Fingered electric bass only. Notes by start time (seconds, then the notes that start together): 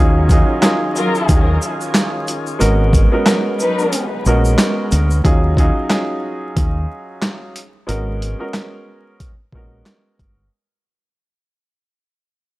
Already playing: D#2
1.29 D#2
2.61 G#1
4.26 A#1
4.92 D2
5.25 D#2
6.57 D#2
7.89 G#1
9.53 A#1
10.20 G1